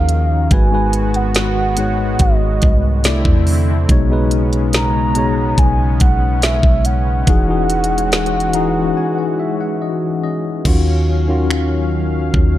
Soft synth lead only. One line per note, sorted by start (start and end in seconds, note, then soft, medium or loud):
0.00 0.53 F5 loud
0.52 1.18 G#5 loud
1.16 1.36 F#5 medium
1.37 2.23 F#5 loud
2.21 3.05 D#5 medium
4.74 5.60 A#5 loud
5.59 6.01 G#5 loud
6.01 6.45 F#5 loud
6.43 6.87 E5 loud
6.86 10.23 F#5 medium